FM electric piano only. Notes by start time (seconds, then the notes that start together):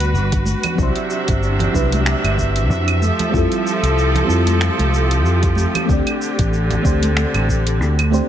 Already playing: G3 B3 D4 F#4 B4
0.75 F#3 C4 D4
0.81 E4 C5
1.72 F#3 C4 D4 E4 B4
3.30 G3 C4 E4
3.35 F4 A4
4.25 G3 C4 E4
4.30 F4 A4
5.85 A3 C4
5.89 D4 G4 D5
6.82 A3 C4 D4 G4
6.86 C5
8.10 A3 C4 D4 G4 C5